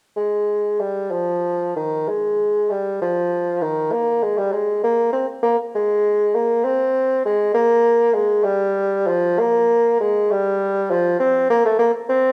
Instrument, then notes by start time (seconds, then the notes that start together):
bassoon
0.16 G#3
0.80 G3
1.11 F3
1.76 D#3
2.08 G#3
2.71 G3
3.02 F3
3.62 D#3
3.92 A#3
4.23 G#3
4.38 G3
4.52 G#3
4.83 A#3
5.12 C4
5.43 A#3
5.75 G#3
6.35 A#3
6.64 C4
7.25 G#3
7.54 A#3
8.14 G#3
8.44 G3
9.07 F3
9.39 A#3
10.00 G#3
10.31 G3
10.91 F3
11.20 C4
11.50 A#3
11.65 A3
11.79 A#3
12.09 C4